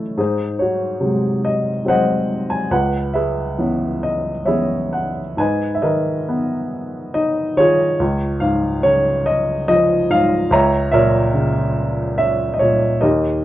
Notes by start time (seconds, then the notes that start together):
Already playing: A2 E3 A3 C#4 E4 A4 C#5
0.17 G#2 D#4 G#4 C5
0.59 F#4 C#5
1.00 C3 F#3 G#3
1.45 D#5
1.85 F#3 G#3 C4 F#5
1.89 C5 D#5
2.50 G#5
2.71 C#2 B4 F#5
3.14 G#4 B4 E5
3.58 E3 B3 C#4
4.03 D#5
4.45 E3 B3 C#4 E4 G#4 C#5 E5
4.93 F#5
5.37 G#2 B4 D#5 G#5
5.75 E5
5.82 D#3 A#4 B4 D#5
6.29 B3
7.14 D#4 D#5
7.57 D#3 F4 G#4 C#5
8.00 C#2
8.40 G#2 F5
8.83 C#3 C#5
9.26 D#5
9.68 F3 D#5
10.10 G#2 F5
10.51 C#2 C#5 E5 A#5
10.91 A#2 A#4 C#5 E5
11.34 C#3
12.18 C#4 E5
12.54 D#5
12.59 A#2 C#5
13.01 D#2 G4 A#4 D#5